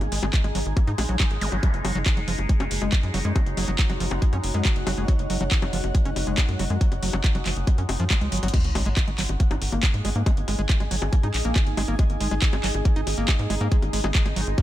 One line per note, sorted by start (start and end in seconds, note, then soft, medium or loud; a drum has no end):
0.00 0.09 G#1 medium
0.00 8.52 G#3 medium
0.00 8.52 D#4 medium
0.00 2.18 G#4 medium
0.00 2.76 D#5 medium
0.00 2.30 G#5 medium
0.00 closed hi-hat soft
0.00 high bongo soft
0.12 0.20 G#1 loud
0.12 0.19 G#3 medium
0.12 open hi-hat loud
0.23 0.30 G#1 medium
0.23 0.26 G#3 loud
0.23 closed hi-hat soft
0.23 high bongo medium
0.33 kick loud
0.33 clap loud
0.33 closed hi-hat medium
0.44 0.52 G#1 medium
0.44 0.47 G#3 medium
0.44 closed hi-hat soft
0.44 high bongo soft
0.55 0.63 G#1 medium
0.55 0.60 F#3 medium
0.55 open hi-hat loud
0.66 0.74 G#1 medium
0.66 closed hi-hat soft
0.77 0.80 A#3 medium
0.77 kick loud
0.77 closed hi-hat medium
0.77 high bongo soft
0.87 0.95 G#2 medium
0.87 0.92 D#4 medium
0.87 closed hi-hat soft
0.98 1.06 A#1 loud
0.98 1.03 G#3 loud
0.98 open hi-hat loud
0.98 high bongo medium
1.09 1.17 A#1 medium
1.09 1.17 F#3 medium
1.09 closed hi-hat soft
1.20 1.25 F#3 medium
1.20 kick loud
1.20 clap loud
1.20 closed hi-hat medium
1.20 high bongo soft
1.31 1.38 G#1 medium
1.31 closed hi-hat soft
1.41 1.49 G#1 loud
1.41 1.46 G#3 medium
1.41 open hi-hat loud
1.41 zap medium
1.52 1.60 G#1 loud
1.52 1.57 F#3 medium
1.52 closed hi-hat soft
1.52 high bongo soft
1.63 1.68 F#3 medium
1.63 9.34 F#4 medium
1.63 kick loud
1.63 closed hi-hat medium
1.63 high bongo soft
1.74 1.81 F#1 medium
1.74 closed hi-hat soft
1.85 1.92 F#1 loud
1.85 1.92 F#3 medium
1.85 open hi-hat loud
1.85 high bongo medium
1.89 9.99 C#5 medium
1.95 2.03 F#1 medium
1.95 1.98 F#3 loud
1.95 closed hi-hat soft
2.06 kick loud
2.06 clap loud
2.06 closed hi-hat medium
2.06 high bongo soft
2.17 2.25 F#1 medium
2.17 2.20 F#3 medium
2.17 closed hi-hat soft
2.28 2.35 F#1 loud
2.28 2.33 F3 medium
2.28 9.12 F#5 medium
2.28 open hi-hat loud
2.38 2.46 F#1 medium
2.38 closed hi-hat soft
2.38 high bongo soft
2.49 2.52 G#3 medium
2.49 kick loud
2.49 closed hi-hat medium
2.60 2.68 F#1 medium
2.60 2.65 C#4 medium
2.60 closed hi-hat soft
2.60 high bongo medium
2.71 2.79 F#1 loud
2.71 open hi-hat loud
2.82 2.89 F#1 medium
2.82 2.94 G#3 medium
2.82 closed hi-hat soft
2.82 high bongo soft
2.92 2.95 F#3 medium
2.92 kick loud
2.92 clap loud
2.92 closed hi-hat medium
3.03 3.11 F#2 medium
3.03 closed hi-hat soft
3.14 3.22 F#1 loud
3.14 3.19 F#3 loud
3.14 open hi-hat loud
3.14 high bongo soft
3.25 3.33 F#2 medium
3.25 3.32 G#3 medium
3.25 closed hi-hat soft
3.36 3.41 F#3 medium
3.36 kick loud
3.36 closed hi-hat medium
3.36 high bongo medium
3.46 3.54 F#1 medium
3.46 closed hi-hat soft
3.57 3.65 F#1 loud
3.57 3.65 F#3 medium
3.57 open hi-hat loud
3.57 high bongo soft
3.68 3.76 F#1 medium
3.68 3.71 F#3 loud
3.68 closed hi-hat soft
3.79 kick loud
3.79 clap loud
3.79 closed hi-hat medium
3.90 3.97 F#1 medium
3.90 3.93 F#3 medium
3.90 closed hi-hat soft
3.90 high bongo soft
4.00 4.08 F#1 medium
4.00 4.05 F3 medium
4.00 open hi-hat loud
4.11 4.19 F#1 medium
4.11 closed hi-hat soft
4.11 high bongo medium
4.22 4.25 G#3 medium
4.22 kick loud
4.22 closed hi-hat medium
4.33 4.40 F#2 medium
4.33 4.38 C#4 medium
4.33 closed hi-hat soft
4.33 high bongo soft
4.44 4.51 F#1 loud
4.44 open hi-hat loud
4.54 4.62 F#2 medium
4.54 4.67 G#3 medium
4.54 closed hi-hat soft
4.65 4.68 F#3 medium
4.65 kick loud
4.65 clap loud
4.65 closed hi-hat medium
4.65 high bongo soft
4.76 4.84 F#1 medium
4.76 closed hi-hat soft
4.87 4.94 F#1 loud
4.87 4.92 F#3 loud
4.87 open hi-hat loud
4.87 high bongo medium
4.97 5.05 F#1 loud
4.97 5.05 G#3 medium
4.97 closed hi-hat soft
5.08 5.13 F#3 medium
5.08 kick loud
5.08 closed hi-hat medium
5.08 high bongo soft
5.19 5.27 F#1 medium
5.19 closed hi-hat soft
5.30 5.38 F#1 loud
5.30 5.37 F#3 medium
5.30 open hi-hat loud
5.41 5.48 F#1 medium
5.41 5.44 F#3 loud
5.41 closed hi-hat soft
5.41 high bongo soft
5.51 kick loud
5.51 clap loud
5.51 closed hi-hat medium
5.62 5.70 F#1 medium
5.62 5.65 F#3 medium
5.62 closed hi-hat soft
5.62 high bongo medium
5.73 5.81 F#1 medium
5.73 5.78 F3 medium
5.73 open hi-hat loud
5.84 5.92 F#1 medium
5.84 closed hi-hat soft
5.84 high bongo soft
5.95 5.98 G#3 medium
5.95 kick loud
5.95 closed hi-hat medium
6.05 6.13 F#1 medium
6.05 6.10 C#4 medium
6.05 closed hi-hat soft
6.16 6.24 F#1 loud
6.16 open hi-hat loud
6.16 high bongo soft
6.27 6.35 F#1 medium
6.27 6.39 G#3 medium
6.27 closed hi-hat soft
6.38 6.41 F#3 medium
6.38 kick loud
6.38 clap loud
6.38 closed hi-hat medium
6.38 high bongo medium
6.49 6.56 F#2 medium
6.49 closed hi-hat soft
6.59 6.67 F#1 loud
6.59 6.64 F#3 loud
6.59 open hi-hat loud
6.59 high bongo soft
6.70 6.78 F#2 medium
6.70 6.78 G#3 medium
6.70 closed hi-hat soft
6.81 6.86 F#3 medium
6.81 kick loud
6.81 closed hi-hat medium
6.92 6.99 F#1 medium
6.92 closed hi-hat soft
6.92 high bongo soft
7.03 7.10 F#1 loud
7.03 7.10 F#3 medium
7.03 open hi-hat loud
7.13 7.21 F#1 medium
7.13 7.16 F#3 loud
7.13 high bongo medium
7.24 kick loud
7.24 clap loud
7.24 closed hi-hat medium
7.35 7.43 F#1 medium
7.35 7.38 F#3 medium
7.35 closed hi-hat soft
7.35 high bongo soft
7.46 7.53 F#1 loud
7.46 7.51 F3 medium
7.46 clap medium
7.46 open hi-hat loud
7.57 7.64 F#1 loud
7.57 closed hi-hat soft
7.67 7.70 G#3 medium
7.67 kick loud
7.67 closed hi-hat medium
7.67 high bongo soft
7.78 7.86 F#2 medium
7.78 7.83 C#4 medium
7.78 closed hi-hat soft
7.89 7.97 F#1 loud
7.89 open hi-hat loud
7.89 high bongo medium
8.00 8.07 F#2 medium
8.00 8.05 F3 loud
8.00 closed hi-hat soft
8.10 8.15 G#3 medium
8.10 kick loud
8.10 clap loud
8.10 closed hi-hat medium
8.10 high bongo soft
8.21 8.29 C#2 medium
8.21 8.29 G#3 medium
8.21 closed hi-hat soft
8.32 8.40 G#1 medium
8.32 8.40 F#3 medium
8.32 closed hi-hat medium
8.32 open hi-hat loud
8.37 closed hi-hat medium
8.43 8.51 G#1 loud
8.43 8.48 F#3 loud
8.43 closed hi-hat medium
8.43 high bongo soft
8.48 closed hi-hat medium
8.54 8.59 G#3 medium
8.54 14.62 G#3 medium
8.54 14.62 D#4 medium
8.54 14.62 G#4 medium
8.54 kick loud
8.54 closed hi-hat medium
8.54 crash loud
8.54 high bongo soft
8.54 sub drop medium
8.64 8.72 G#1 medium
8.64 closed hi-hat soft
8.75 8.83 G#1 loud
8.75 8.83 G#3 medium
8.75 open hi-hat loud
8.75 high bongo medium
8.86 8.94 G#1 medium
8.86 8.89 G#3 loud
8.86 closed hi-hat soft
8.97 kick loud
8.97 clap loud
8.97 closed hi-hat medium
8.97 high bongo soft
9.08 9.15 G#1 medium
9.08 9.11 G#3 medium
9.08 14.62 D#5 medium
9.08 closed hi-hat soft
9.18 9.26 G#1 loud
9.18 9.23 F#3 medium
9.18 14.62 G#5 medium
9.18 clap medium
9.18 open hi-hat loud
9.29 9.37 G#1 medium
9.29 closed hi-hat soft
9.29 high bongo soft
9.40 9.43 A#3 medium
9.40 kick loud
9.40 closed hi-hat medium
9.51 9.58 G#1 medium
9.51 9.56 D#4 medium
9.51 closed hi-hat soft
9.51 high bongo medium
9.62 9.69 G#1 loud
9.62 open hi-hat loud
9.72 9.80 G#1 medium
9.72 9.85 A#3 medium
9.72 high bongo soft
9.83 9.86 G#3 medium
9.83 kick loud
9.83 clap loud
9.83 closed hi-hat medium
9.94 10.02 G#2 medium
9.94 closed hi-hat soft
10.05 10.12 G#1 loud
10.05 10.10 G#3 loud
10.05 open hi-hat loud
10.05 high bongo soft
10.15 10.23 G#2 loud
10.15 10.23 A#3 medium
10.15 closed hi-hat soft
10.26 10.31 G#3 medium
10.26 kick loud
10.26 closed hi-hat medium
10.26 high bongo medium
10.37 10.45 G#1 medium
10.37 closed hi-hat soft
10.48 10.56 G#1 loud
10.48 10.55 G#3 medium
10.48 open hi-hat loud
10.48 high bongo soft
10.59 10.66 G#1 medium
10.59 10.62 G#3 loud
10.59 closed hi-hat soft
10.69 kick loud
10.69 clap loud
10.69 closed hi-hat medium
10.80 10.88 G#1 medium
10.80 10.83 G#3 medium
10.80 closed hi-hat soft
10.80 high bongo soft
10.91 10.99 G#1 medium
10.91 10.96 F#3 medium
10.91 open hi-hat loud
11.02 11.10 G#1 medium
11.02 closed hi-hat soft
11.02 high bongo medium
11.13 11.16 A#3 medium
11.13 kick loud
11.13 closed hi-hat medium
11.23 11.31 G#2 medium
11.23 11.28 D#4 medium
11.23 closed hi-hat soft
11.23 high bongo soft
11.34 11.42 A#1 loud
11.34 clap medium
11.34 open hi-hat loud
11.45 11.53 A#1 medium
11.45 11.57 A#3 medium
11.45 closed hi-hat soft
11.56 11.59 G#3 medium
11.56 kick loud
11.56 clap loud
11.56 closed hi-hat medium
11.56 high bongo soft
11.67 11.74 G#1 medium
11.67 closed hi-hat soft
11.77 11.85 G#1 loud
11.77 11.82 G#3 loud
11.77 open hi-hat loud
11.77 high bongo medium
11.88 11.96 G#1 loud
11.88 11.96 A#3 medium
11.88 closed hi-hat soft
11.99 12.04 G#3 medium
11.99 kick loud
11.99 closed hi-hat medium
11.99 high bongo soft
12.10 12.17 G#1 medium
12.10 closed hi-hat soft
12.21 12.28 G#1 loud
12.21 12.28 G#3 medium
12.21 open hi-hat loud
12.31 12.39 G#1 medium
12.31 12.34 G#3 loud
12.31 closed hi-hat soft
12.31 high bongo soft
12.42 kick loud
12.42 clap loud
12.42 closed hi-hat medium
12.53 12.61 G#1 medium
12.53 12.56 G#3 medium
12.53 closed hi-hat soft
12.53 high bongo medium
12.64 12.71 G#1 loud
12.64 12.69 F#3 medium
12.64 clap medium
12.64 open hi-hat loud
12.74 12.82 G#1 loud
12.74 closed hi-hat soft
12.74 high bongo soft
12.85 12.88 A#3 medium
12.85 kick loud
12.85 closed hi-hat medium
12.96 13.04 G#1 medium
12.96 13.01 D#4 medium
12.96 closed hi-hat soft
13.07 13.15 G#1 loud
13.07 open hi-hat loud
13.07 high bongo soft
13.18 13.25 G#1 medium
13.18 13.30 A#3 medium
13.18 closed hi-hat soft
13.28 13.31 G#3 medium
13.28 kick loud
13.28 clap loud
13.28 closed hi-hat medium
13.28 high bongo medium
13.39 13.47 G#2 medium
13.39 closed hi-hat soft
13.50 13.58 G#1 loud
13.50 13.55 G#3 loud
13.50 open hi-hat loud
13.50 high bongo soft
13.61 13.68 G#2 loud
13.61 13.68 A#3 medium
13.61 closed hi-hat soft
13.72 13.77 G#3 medium
13.72 kick loud
13.72 closed hi-hat medium
13.82 13.90 G#1 medium
13.82 closed hi-hat soft
13.82 high bongo soft
13.93 14.01 G#1 loud
13.93 14.01 G#3 medium
13.93 open hi-hat loud
14.04 14.12 G#1 medium
14.04 14.07 G#3 loud
14.04 closed hi-hat soft
14.04 high bongo medium
14.15 kick loud
14.15 clap loud
14.15 closed hi-hat medium
14.26 14.33 G#1 medium
14.26 14.29 G#3 medium
14.26 closed hi-hat soft
14.26 high bongo soft
14.36 14.44 G#1 medium
14.36 14.41 F#3 medium
14.36 open hi-hat loud
14.47 14.55 G#1 loud
14.47 closed hi-hat soft
14.58 14.61 A#3 medium
14.58 kick loud
14.58 closed hi-hat medium
14.58 high bongo soft